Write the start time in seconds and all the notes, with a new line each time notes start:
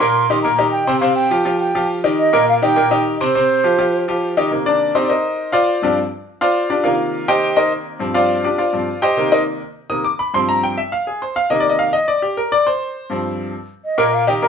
0.00 A#2 A#3 A#4 C6
0.30 D#3 D#4 G4
0.42 A#2 A#3 A#4 A#5
0.58 D#3 D#4 G4
0.71 G5
0.87 C3 C4 C5
1.00 C3 C4 C5 F5
1.15 G5
1.31 F3 F4 G4
1.45 F3 F4 G4
1.59 G5
1.75 F3 F4 G4
2.04 D#3 D#4 G4
2.19 D#5
2.33 A#2 A#3 A#4
2.49 F5
2.62 D#3 D#4 G4 G5
2.76 A#2 A#3 A#4
2.91 D#3 D#4 G4
3.20 C3 C4 C5
3.35 C3 C4 C5
3.64 F3 F4 G4
3.78 F3 F4 G4
4.08 F3 F4 G4
4.37 D#3 D#4 G4
4.51 C3 D#3 A#3
4.66 D4 D5
4.95 C4 D#4 G4 C5
5.05 D5
5.09 D#4 A#4 C5 D#5
5.52 F4 C5 D5 F5
5.82 G2 F3 C4 D4 F4 G4 D5
6.41 F4 C5 D5 F5
6.70 D4 F4 G4 D5
6.83 C3 D#3 A#3 F4 F5
7.28 G4 C5 D#5 G5
7.56 D#4 A#4 C5 D#5
7.99 G2 F3 C4
8.14 F4 C5 D5 F5
8.44 D4 F4 G4 D5
8.58 F4 C5 D5 F5
8.73 G2 F3 C4
9.02 G4 C5 D#5 G5
9.17 C3 D#3 A#3
9.32 D#4 A#4 C5 D#5
9.90 C3 D#3 A#3 D#6
10.05 D6
10.19 B5
10.34 G2 F3 C4 C6
10.49 A#5
10.63 G5
10.77 E5
10.92 F5
11.07 G#4
11.22 C5
11.36 F5
11.50 C3 D#3 A#3 D#5
11.60 D5
11.70 D#5
11.79 F5
11.93 D#5
12.08 D5
12.22 G4
12.37 A#4
12.52 D5
12.67 C5
13.10 G2 F3 C4
13.85 D#5
13.98 A#2 A#3 A#4
14.14 F5
14.27 D#3 D#4 G4 G5
14.42 A#2 A#3 A#4 A#5